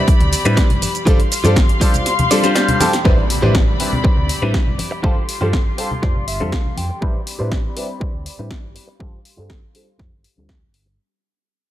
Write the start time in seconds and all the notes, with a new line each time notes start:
Already playing: C4 G4 B4 C5 D5 E5 B5
0.08 muted fingered electric bass stroke, kick, closed hi-hat, shaker
0.20 D2, closed hi-hat, high conga, low conga
0.32 open hi-hat, shaker
0.45 A2 G3 C4 D4 E4 B4, muted clean electric guitar stroke, closed hi-hat, shaker
0.57 G4 B4 C5 D5, kick, snare, closed hi-hat, shaker
0.70 G1, closed hi-hat, low conga
0.82 muted clean electric guitar stroke, open hi-hat, high conga, shaker
0.94 closed hi-hat, shaker
1.06 G1 G3 C4 D4 F4 G4 A4 C5 D5 F5 C6, kick, closed hi-hat, shaker
1.19 closed hi-hat, shaker
1.31 muted clean electric guitar stroke, open hi-hat, shaker
1.44 G2 G3 C4 D4 F4 G4 A4 C5 D5, closed hi-hat, high conga, shaker
1.56 G1, kick, snare, closed hi-hat, shaker
1.68 muted clean electric guitar stroke, closed hi-hat, shaker
1.81 G3 C4 D4 F4 G4 A4 C5 D5, kick, open hi-hat, shaker
1.94 closed hi-hat, low conga, shaker
2.06 snare, closed hi-hat, shaker
2.19 closed hi-hat, high conga, low conga, shaker
2.30 G3 C4 D4 F4 A4 D5, open hi-hat, shaker
2.43 G3 C4 D4 F4 C5, muted clean electric guitar stroke, closed hi-hat, shaker
2.55 F4 G4 C5 D5 F5, snare, closed hi-hat, shaker
2.68 closed hi-hat, low conga, shaker
2.80 G3 C4 D4 F4 A4 G5, muted clean electric guitar stroke, snare, open hi-hat, high conga, shaker
2.93 snare, closed hi-hat, shaker
3.05 A1 G3 C4 D4 E4 G4 B4 C5 D5 B5, kick, impact, shaker
3.18 shaker
3.30 open hi-hat, shaker
3.42 A2 G3 C4 D4 E4 G4 B4 C5 D5, high conga, shaker
3.55 A1, kick, snare
3.68 shaker
3.79 G3 C4 D4 E4 B4, muted clean electric guitar stroke, open hi-hat
3.92 low conga, shaker
4.04 G4 B4 C5 D5, muted fingered electric bass stroke, kick, shaker
4.17 D2, high conga, low conga
4.29 muted clean electric guitar stroke, open hi-hat
4.42 A2 G3 C4 D4 E4 B4
4.54 kick, snare
4.67 G1, low conga
4.78 muted clean electric guitar stroke, open hi-hat, high conga, shaker
4.91 muted clean electric guitar stroke, shaker
5.03 G1 G3 C4 D4 F4 G4 A4 C5 C6, kick
5.17 shaker
5.28 open hi-hat, shaker
5.41 G2 G3 C4 D4 F4 G4 A4 C5, high conga, shaker
5.53 G1, kick, snare
5.66 shaker
5.78 G3 C4 D4 F4 A4 C5, muted clean electric guitar stroke, open hi-hat, shaker
5.91 low conga, shaker
6.02 F2 F4 G4 C5 D5, kick, snare
6.15 G1, high conga, low conga
6.27 E5, muted clean electric guitar stroke, open hi-hat, shaker
6.40 F2 G3 C4 D4 F4 A4
6.52 F5, kick, snare
6.65 low conga
6.77 F2 G5, muted clean electric guitar stroke, open hi-hat, high conga, shaker
6.89 muted clean electric guitar stroke, shaker
7.01 A1 G3 C4 D4 E4 G4 B4 C5 D5 B5, kick
7.27 open hi-hat
7.39 A2 G3 C4 D4 E4 G4 B4 C5 D5
7.52 A1, kick, snare
7.76 G3 C4 D4 E4 B4, muted clean electric guitar stroke, open hi-hat
8.00 G4 B4 C5 D5, muted fingered electric bass stroke, kick
8.14 D2
8.25 muted clean electric guitar stroke, open hi-hat
8.38 A2 G3 C4 D4 E4 B4
8.51 kick, snare
8.64 G1
8.75 muted clean electric guitar stroke, open hi-hat
8.87 muted clean electric guitar stroke
9.00 G1 G3 C4 D4 F4 G4 A4 C5 F5 C6, kick
9.25 open hi-hat
9.37 G2 G3 C4 D4 F4 G4 A4 C5
9.50 G1, kick, snare
9.74 G3 C4 D4 F4 A4, muted clean electric guitar stroke, open hi-hat
9.99 F2 F4 G4 C5, kick, snare
10.12 G1
10.24 muted clean electric guitar stroke, open hi-hat
10.37 D2 G3 C4 D4 F4 A4
10.49 kick, snare
10.62 G1
10.73 muted clean electric guitar stroke, open hi-hat
10.86 muted clean electric guitar stroke